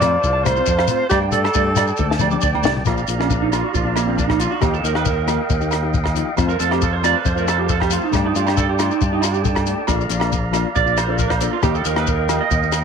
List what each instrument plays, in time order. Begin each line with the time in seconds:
Already playing: fingered electric bass F2, tonewheel organ C5 F5 A5
0.00 steel-string acoustic guitar A3 C4 F4, clean electric guitar C5, alto saxophone D5, cross-stick, closed hi-hat, low agogo, shekere
0.21 fingered electric bass C2, clean electric guitar C5, kick, shekere
0.33 clean electric guitar A5
0.43 steel-string acoustic guitar A3 C4, clean electric guitar C5, alto saxophone C5, muted steel-string acoustic guitar stroke, cross-stick, closed hi-hat, low agogo, shekere
0.55 steel-string acoustic guitar C4 F4, clean electric guitar C6, shekere
0.66 fingered electric bass F2, clean electric guitar C5, kick, shekere
0.78 clean electric guitar F5, cross-stick, low agogo
0.88 steel-string acoustic guitar A3 C4 F4, clean electric guitar C5, closed hi-hat, shekere
1.09 fingered electric bass G2, steel-string acoustic guitar A3 D4 G4, alto saxophone G4, clean electric guitar D5, tonewheel organ D5 G5, kick, cross-stick, low agogo, shekere
1.22 clean electric guitar G5
1.32 steel-string acoustic guitar A3 G4, alto saxophone A4, clean electric guitar D5, closed hi-hat, shekere
1.44 clean electric guitar A5, cross-stick, low agogo
1.54 fingered electric bass G2, steel-string acoustic guitar A3 D4 G4, clean electric guitar D5, kick, shekere
1.67 muted clean electric guitar stroke
1.76 steel-string acoustic guitar A3 D4 G4, clean electric guitar D5, cross-stick, closed hi-hat, low agogo, shekere
1.87 shekere
1.97 fingered electric bass D2, clean electric guitar A4, kick, high tom, shekere
2.10 clean electric guitar A5, snare
2.19 steel-string acoustic guitar A3 D4 G4, clean electric guitar D5, mid tom, low agogo, shekere
2.31 steel-string acoustic guitar D4 G4, clean electric guitar D6, mid tom, shekere
2.41 fingered electric bass D2, clean electric guitar D5, kick, shekere
2.53 clean electric guitar G5, mid tom, low agogo
2.62 fingered electric bass C2, steel-string acoustic guitar A3 D4 G4, clean electric guitar D5, snare, shekere
2.77 floor tom
2.85 fingered electric bass A#1, steel-string acoustic guitar F3 A#3 F4, tonewheel organ D5 F5 A#5, muted steel-string acoustic guitar stroke, kick, cross-stick, low agogo, shekere
2.97 shekere
3.07 fingered electric bass A#1, steel-string acoustic guitar F3 A#3 D4 F4, closed hi-hat, shekere
3.18 steel-string acoustic guitar A#3 D4 F4, clean electric guitar C#4, cross-stick, low agogo
3.30 clean electric guitar D4, kick, shekere
3.42 clean electric guitar D#4
3.50 steel-string acoustic guitar F3 A#3 D4 F4, clean electric guitar F4, cross-stick, closed hi-hat, low agogo, shekere
3.64 clean electric guitar F#4
3.74 fingered electric bass A#1, clean electric guitar F4, kick, shekere
3.84 steel-string acoustic guitar A#3 D4 F4, clean electric guitar D4
3.96 clean electric guitar A#3, cross-stick, closed hi-hat, low agogo, shekere
4.07 steel-string acoustic guitar A#3 D4 F4, clean electric guitar C4
4.18 clean electric guitar D4, kick, shekere
4.29 clean electric guitar D#4, kick, cross-stick, low agogo
4.39 steel-string acoustic guitar F3 A#3 D4 F4, clean electric guitar F4, closed hi-hat, shekere
4.51 clean electric guitar F#4
4.61 fingered electric bass D#2, steel-string acoustic guitar F3 A#3 D#4 G4, clean electric guitar G4, tonewheel organ D#5 G5, kick, cross-stick, low agogo, shekere
4.74 clean electric guitar A4, shekere
4.82 fingered electric bass D#2, steel-string acoustic guitar F3 A#3 D#4 G4, clean electric guitar A#4, closed hi-hat, shekere
4.94 steel-string acoustic guitar A#3 D#4 G4, clean electric guitar B4, cross-stick, low agogo
5.05 clean electric guitar A#4, kick, shekere
5.26 steel-string acoustic guitar F3 A#3 D#4 G4, cross-stick, closed hi-hat, low agogo, shekere
5.50 fingered electric bass D#2, kick, shekere
5.61 steel-string acoustic guitar A#3 D#4 G4, shekere
5.71 cross-stick, closed hi-hat, low agogo, shekere
5.83 steel-string acoustic guitar A#3 D#4 G4
5.94 kick, shekere
6.04 kick, cross-stick, low agogo
6.14 steel-string acoustic guitar F3 A#3 D#4 G4, closed hi-hat, shekere
6.37 fingered electric bass F2, steel-string acoustic guitar F3 A3 C4 F4, tonewheel organ C5 A5, kick, cross-stick, low agogo, shekere
6.49 clean electric guitar A#4, shekere
6.59 fingered electric bass F2, steel-string acoustic guitar F3 A3 C4 F4, clean electric guitar A4, closed hi-hat, shekere
6.69 steel-string acoustic guitar A3 C4 F4, clean electric guitar G4, cross-stick, low agogo
6.82 clean electric guitar A4, kick, shekere
6.93 clean electric guitar C5
7.02 steel-string acoustic guitar F3 A3 C4 F4, clean electric guitar D5, cross-stick, closed hi-hat, low agogo, shekere
7.15 clean electric guitar B4
7.25 fingered electric bass F2, clean electric guitar C5, kick, shekere
7.35 steel-string acoustic guitar A3 C4 F4, clean electric guitar A#4, shekere
7.47 clean electric guitar A4, cross-stick, closed hi-hat, low agogo, shekere
7.58 steel-string acoustic guitar A3 C4 F4, clean electric guitar G4
7.69 clean electric guitar A4, kick, shekere
7.80 clean electric guitar G4, kick, cross-stick, low agogo
7.89 steel-string acoustic guitar F3 A3 C4 F4, clean electric guitar F4, closed hi-hat, shekere
8.04 clean electric guitar D#4
8.11 fingered electric bass G2, steel-string acoustic guitar A3 D4 G4, clean electric guitar D4, tonewheel organ D5 G5, kick, cross-stick, low agogo, shekere
8.25 clean electric guitar D#4
8.34 fingered electric bass G2, steel-string acoustic guitar A3 D4 G4, clean electric guitar F4, closed hi-hat, shekere
8.46 steel-string acoustic guitar D4 G4, clean electric guitar G4, cross-stick, low agogo, shekere
8.57 clean electric guitar A4, kick, shekere
8.69 clean electric guitar G4
8.79 steel-string acoustic guitar A3 D4 G4, clean electric guitar F4, cross-stick, closed hi-hat, low agogo, shekere
8.90 clean electric guitar D#4, shekere
9.01 fingered electric bass G2, clean electric guitar D4, kick, shekere
9.12 steel-string acoustic guitar D4 G4, clean electric guitar D#4
9.22 clean electric guitar F4, cross-stick, closed hi-hat, low agogo, shekere
9.33 steel-string acoustic guitar D4 G4, clean electric guitar G4, shekere
9.44 clean electric guitar A4, kick, shekere
9.55 kick, cross-stick, low agogo, shekere
9.66 steel-string acoustic guitar A3 D4 G4, closed hi-hat, shekere
9.87 fingered electric bass A#1, steel-string acoustic guitar F3 A#3 D4 F4, tonewheel organ F5 A#5, kick, cross-stick, low agogo, shekere
10.01 shekere
10.08 fingered electric bass A#1, steel-string acoustic guitar F3 A#3 D4 F4, closed hi-hat, shekere
10.19 steel-string acoustic guitar A#3 D4 F4, cross-stick, low agogo
10.32 kick, shekere
10.52 steel-string acoustic guitar F3 A#3 D4 F4, cross-stick, closed hi-hat, low agogo, shekere
10.75 fingered electric bass A#1, clean electric guitar D5, kick, shekere
10.86 steel-string acoustic guitar A#3 D4 F4, shekere
10.97 clean electric guitar C5, cross-stick, closed hi-hat, low agogo, shekere
11.07 steel-string acoustic guitar A#3 D4 F4, clean electric guitar A4
11.18 clean electric guitar A#4, kick, shekere
11.30 clean electric guitar C5, kick, cross-stick, low agogo
11.41 steel-string acoustic guitar A#3 D4 F4, clean electric guitar A4, closed hi-hat, shekere
11.53 clean electric guitar F4
11.62 fingered electric bass D#2, steel-string acoustic guitar F3 A#3 D#4 G4, clean electric guitar G4, tonewheel organ D#5 F5 G5, kick, cross-stick, low agogo, shekere
11.75 clean electric guitar A4, shekere
11.83 fingered electric bass D#2, steel-string acoustic guitar F3 A#3 D#4 G4, clean electric guitar A#4, closed hi-hat, shekere
11.94 steel-string acoustic guitar A#3 D#4 G4, clean electric guitar B4, cross-stick, low agogo
12.07 clean electric guitar A#4, kick, shekere
12.28 steel-string acoustic guitar F3 A#3 D#4 G4, cross-stick, closed hi-hat, low agogo, shekere
12.41 clean electric guitar D#5
12.51 fingered electric bass D#2, kick, shekere
12.63 steel-string acoustic guitar A#3 D#4, shekere
12.72 cross-stick, closed hi-hat, low agogo, shekere